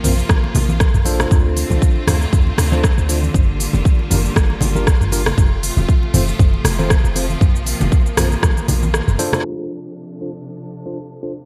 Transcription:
Already playing: C3 F3 A#3 F4
0.04 A#1 C4 F4 A#4 C5, mid tom, open hi-hat, high conga, low conga, shaker
0.19 muted conga, shaker
0.29 A#1, kick, cross-stick, high conga, shaker
0.44 muted conga
0.55 A#1, open hi-hat, high conga, low conga, shaker
0.68 muted conga, high conga, shaker
0.80 kick, cross-stick, shaker
0.94 A#1, mid tom, shaker
1.05 D4 F4 A4 C5, open hi-hat, muted conga, shaker
1.20 cross-stick, low conga, shaker
1.31 D2 D3 A3 C4 F4, kick, mid tom, muted conga, shaker
1.57 open hi-hat, muted conga, shaker
1.70 C2, high conga, low conga, shaker
1.82 kick, shaker
1.96 muted conga
2.07 D2 D4 F4 A4 C5, cross-stick, mid tom, open hi-hat, high conga, low conga, shaker
2.21 muted conga, shaker
2.33 D2, kick, mid tom, high conga, shaker
2.47 muted conga
2.58 D2, cross-stick, open hi-hat, low conga, shaker
2.72 D4 F4 A4 C5, muted conga, high conga, shaker
2.84 kick, cross-stick, shaker
2.98 D2, shaker
3.09 D4 F4 A4 C5, open hi-hat, muted conga, shaker
3.23 high conga, shaker
3.34 G1 G3 A#3 F4, kick, mid tom, muted conga, shaker
3.60 open hi-hat, muted conga, shaker
3.73 F1, high conga, low conga, shaker
3.85 kick, shaker
3.99 muted conga
4.11 G1 D4 F4 G4 A#4, mid tom, open hi-hat, high conga, low conga, shaker
4.25 muted conga, shaker
4.36 G1, kick, cross-stick, high conga, shaker
4.50 muted conga
4.61 G1, open hi-hat, high conga, low conga, shaker
4.75 D4 F4 G4 A#4, muted conga, high conga, shaker
4.87 kick, cross-stick, shaker
5.01 G1, mid tom, shaker
5.12 D4 F4 G4 A#4, open hi-hat, muted conga, shaker
5.26 cross-stick, low conga, shaker
5.38 F1 C3 F3 A3, kick, mid tom, muted conga, shaker
5.63 open hi-hat, muted conga, shaker
5.77 D1, high conga, low conga, shaker
5.89 kick, shaker
6.03 muted conga
6.14 F1 C4 F4 A4 C5, mid tom, open hi-hat, high conga, low conga, shaker
6.28 muted conga, shaker
6.39 F1, kick, mid tom, high conga, shaker
6.54 muted conga
6.65 F1, cross-stick, open hi-hat, low conga, shaker
6.78 C4 F4 A4 C5, muted conga, high conga, shaker
6.90 kick, cross-stick, shaker
7.04 F1, shaker
7.15 C4 F4 A4 C5, open hi-hat, muted conga, shaker
7.30 high conga, shaker
7.41 A#1 A#3, kick, mid tom, muted conga, shaker
7.56 shaker
7.66 open hi-hat, muted conga, shaker
7.81 F1, high conga, low conga, shaker
7.92 kick, shaker
8.06 muted conga, shaker
8.17 A#1 C4 F4 A#4 C5, cross-stick, mid tom, open hi-hat, high conga, low conga, shaker
8.32 muted conga, shaker
8.43 A#1, kick, cross-stick, high conga, shaker
8.57 muted conga, shaker
8.68 A#1, open hi-hat, high conga, low conga, shaker
8.82 muted conga, high conga, shaker
8.94 cross-stick, shaker
9.08 F1, mid tom, shaker
9.19 D4 F4 A4 C5, open hi-hat, muted conga, shaker
9.32 cross-stick, low conga, shaker
9.45 C3 F3 D4 A4, crash
10.21 D4 F4 A4 C5
10.86 D4 F4 A4 C5
11.23 D4 F4 A4 C5

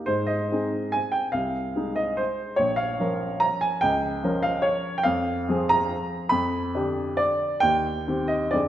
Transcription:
0.06 G#2 C5
0.27 D#5
0.52 C4 D#4 G#4
0.92 G#5
1.12 G5
1.32 C2 F5
1.76 G#3 D#4 G#4
1.96 D#5
2.17 C5
2.56 A#1 C#5
2.76 F5
2.99 F3 C#4 A#4
3.40 A#5
3.61 G#5
3.81 C#2 G5
4.24 F3 C#4 A#4
4.43 F5
4.62 C#5
4.98 G5
5.03 F2 F5
5.49 F3 C4 G#4
5.69 A#5
6.29 F2 B5
6.75 D3 D4 G4
7.17 D5
7.60 D#2 G5
8.07 D#3 C4 G4
8.28 D#5
8.51 F2 D3 C4 G#4 D5

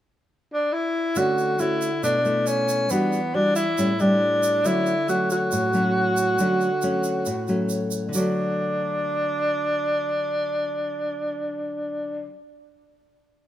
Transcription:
0.53 D4
0.73 E4
1.15 D3 A3 C#4 F#4, shaker
1.38 shaker
1.59 A3 C#4 E4 F#4, shaker
1.81 shaker
2.03 B2 A3 D4 E4, shaker
2.25 A3 E4, shaker
2.47 C#4, shaker
2.69 shaker
2.90 E3 G3 B3 D4 F#4, shaker
3.12 shaker
3.34 G3 D4 F#4
3.56 E4, shaker
3.78 A2 G3 C#4 E4, shaker
3.99 G3 D4 E4, shaker
4.43 shaker
4.65 D3 F#3 A3 C#4 E4, shaker
4.86 shaker
5.08 F#3 A3 C#4 F#4, shaker
5.30 F#4, shaker
5.52 A2, shaker
5.73 F#3 A3 C#4, shaker
6.17 shaker
6.39 D3 F#3 A3 C#4, shaker
6.61 shaker
6.82 F#3 A3 C#4, shaker
7.04 shaker
7.26 A2, shaker
7.48 F#3 A3 C#4, shaker
7.69 shaker
7.91 shaker
8.09 D3
8.13 F#3 D4, shaker
8.19 A3

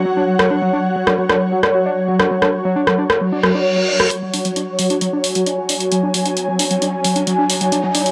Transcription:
Already playing: F#3 F#4 C#5 F#5
0.05 F#3
0.17 D4
0.39 F#3, cross-stick
0.50 D4
0.62 F#3
0.73 D4
0.96 F#3
1.07 D4, cross-stick
1.18 F#3
1.29 D4, cross-stick
1.52 F#3
1.63 D4, cross-stick
1.74 F#3
1.86 D4
2.08 F#3
2.20 D4, cross-stick
2.31 F#3
2.42 D4, cross-stick
2.65 F#3
2.76 D4
2.87 F#3, cross-stick
2.98 D4
3.10 cross-stick
3.21 F#3, reverse cymbal
3.32 D4
3.43 F#3, cross-stick
3.55 D4
3.77 F#3
3.89 D4
4.00 F#3, cross-stick
4.11 F#3, closed hi-hat, riser
4.22 F#3
4.34 D4, open hi-hat
4.45 F#3, closed hi-hat
4.56 D4, closed hi-hat
4.79 F#3 G#5, open hi-hat
4.90 D4, closed hi-hat
5.01 F#3, closed hi-hat
5.13 D4
5.24 open hi-hat
5.35 F#3, closed hi-hat
5.46 D4, closed hi-hat
5.58 F#3
5.69 D4, open hi-hat
5.80 closed hi-hat
5.92 F#3, closed hi-hat
6.03 D4
6.14 F#3, open hi-hat
6.26 D4, closed hi-hat
6.37 closed hi-hat
6.48 F#3
6.59 D4, open hi-hat
6.71 F#3, closed hi-hat
6.82 D4, closed hi-hat
7.04 F#3, open hi-hat
7.16 D4, closed hi-hat
7.27 F#3, closed hi-hat
7.38 D4
7.50 open hi-hat
7.61 F#3, closed hi-hat
7.72 D4, closed hi-hat
7.83 F#3
7.95 D4, open hi-hat
8.06 closed hi-hat

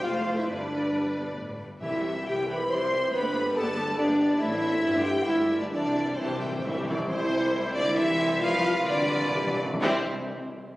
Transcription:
0.03 F1 F2 A3 F4 C5 D5 F5
0.38 E4 E5
0.48 G1 G2 G3 D4 B4 D5
0.93 G2
1.15 B2
1.37 A2
1.59 G2
1.80 C2 C3 E3 E4 G4 E5
1.92 G3 E4 C5
2.03 E3 G4 E5
2.14 G3 E4 C5
2.25 C2 C3 E3 G4 E5 G5
2.34 G3 E4 C5
2.46 E3 G4 B4 E5 B5
2.57 G3 E4 C5
2.68 C2 C3 E3 G4 C5 E5 C6
2.78 G3 E4 C5
2.90 E3 G4 E5
3.00 G3 E4 C5
3.12 G1 G2 B3 G4 B4 B5
3.23 G3 B4 D5
3.34 B3 G4 B4
3.45 G3 B4 D5
3.55 G1 G2 B3 G4 A4 B4 A5
3.66 G3 B4 D5
3.77 B3 G4 B4
3.87 G3 B4 D5
3.97 G1 G2 B3 D4 G4 B4 D5
4.08 G3 B4 D5
4.19 B3 G4 B4
4.30 G3 B4 D5
4.38 A1 A2 A3 E4 A4 E5
4.51 C4 A4 C5
4.62 A3 E4 A4
4.73 C4 A4 C5
4.83 G1 G2 G3 E4 E5
4.95 C4 G4 C5
5.03 G3 E4 G4 E5 G5
5.15 C4 G4 C5
5.22 E4 A4
5.26 G1 G2 G3 E4 F4 E5
5.35 A3 G4 B4
5.47 G3 F4 A4
5.57 A3 D4 G4 B4 D5
5.61 D4
5.69 C2 C3 E3 D4 E4 D5 E5
5.80 C3 G3 G4 C5
5.88 C3
5.94 C3 E3 E4 E5
6.04 C3 G3 G4 C5
6.11 C3
6.16 C2 C3 E3 C4 E4 C5 A5
6.27 C3 G3 G4
6.35 C3
6.40 C3 E3 E4 G5
6.51 C3 G3 G4
6.58 C3
6.63 C2 C3 E3 E4 E5
6.67 C3
6.74 C3 G3 G4
6.83 C3 E3 E4 D5
6.90 C3
6.98 C3 G3 G4
7.08 C2 C3 G3 E4 C5
7.74 D3 D5
7.96 E3 G3 E4 C5 E5
8.40 C3 F3 G3 F4 B4 F5
8.49 C3
8.57 C3
8.64 C3
8.72 C3
8.80 C3
8.85 C3 D3 G3 F4 B4 D5
8.96 C3
9.04 C3
9.12 C3
9.21 C3
9.30 C3
9.35 C3 G4
9.46 C3
9.55 C3
9.64 C3
9.73 C3
9.82 C2 C3 G3 C4 E4 C5 E5

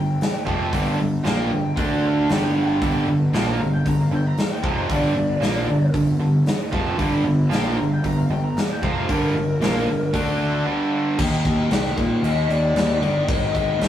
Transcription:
Already playing: G1 G2 D3 G5
0.21 snare, open hi-hat
0.46 F1 F2 C3 F3, kick
0.71 G1 G2 D3 G3, kick, open hi-hat
0.99 G1 G2 D3
1.24 A#1 A#2 F3 A#3 G5, snare, open hi-hat
1.51 G1 G2 D3
1.76 D2 D3 A3 D4 C6, kick, open hi-hat
2.05 F5
2.29 G1 G2 D3 G3 G5, snare, open hi-hat
2.56 G5
2.81 G1 G2 D3 G3, kick, open hi-hat
3.07 G1 G2 D3
3.33 A#1 A#2 F3 A#3 G5, snare, open hi-hat
3.47 A#5
3.59 G1 G2 D3 F5
3.73 G5
3.86 G1 G2 D3 A#5, kick, open hi-hat
4.00 F5
4.12 G1 G2 D3 G5
4.26 A#5
4.38 F5, snare, open hi-hat
4.53 G5
4.62 F1 F2 C3 F3, kick
4.67 A#5
4.80 F5
4.89 G1 G2 D3 G3, kick, open hi-hat
4.93 D5
5.15 G1 G2 D3
5.41 A#1 A#2 F3 A#3, snare, open hi-hat
5.67 G1 G2 D3
5.94 G1 G2 D3, kick, open hi-hat
6.19 G1 G2 D3
6.46 snare, open hi-hat
6.72 F1 F2 C3 F3, kick
6.98 G1 G2 D3 G3, kick, open hi-hat
7.24 G1 G2 D3
7.51 A#1 A#2 F3 A#3 G5, snare, open hi-hat
7.67 A#5
7.79 G1 G2 D3 F5
7.93 G5
8.04 G1 G2 D3 A#5, kick, open hi-hat
8.18 F5
8.30 G1 G2 D3 G5
8.44 A#5
8.57 F5, snare, open hi-hat
8.72 G5
8.82 F1 F2 C3 F3 A#5, kick
8.98 F5
9.07 G1 G2 D3 G3, kick, open hi-hat
9.13 A#4
9.35 G1 G2 D3
9.60 A#1 A#2 F3 A#3, snare, open hi-hat
9.86 G1 G2 D3
10.13 D2 D3 A3 D4, kick, open hi-hat
10.66 G2 D3 G3
11.16 D#2 D#3 A#3 D#4 G5, kick, crash
11.45 D#2, kick, crash
11.70 C2 G5, snare, crash
11.86 snare
11.97 A#2 F5, kick, crash
12.22 D#2 D#5, crash
12.49 D#2 D5, crash
12.74 D#2, snare, crash
13.00 G1 A#3 D#4 D5, crash
13.05 D#3
13.25 G#1 G#2 D#5, kick, crash
13.30 D#3 G#3
13.53 D#5, kick, crash
13.79 G#1 C5, snare, crash

